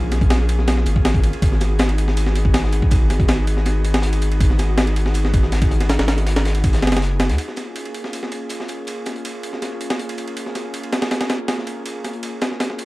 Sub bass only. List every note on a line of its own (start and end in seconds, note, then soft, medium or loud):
0.02 0.85 A#1 medium
0.86 1.32 G#1 loud
1.42 2.84 G#1 loud
2.82 2.99 B1 medium
3.01 4.48 G#1 medium
4.50 5.97 G#1 medium
5.99 6.84 G#1 medium
6.83 7.31 F#1 medium
7.29 7.38 D#2 medium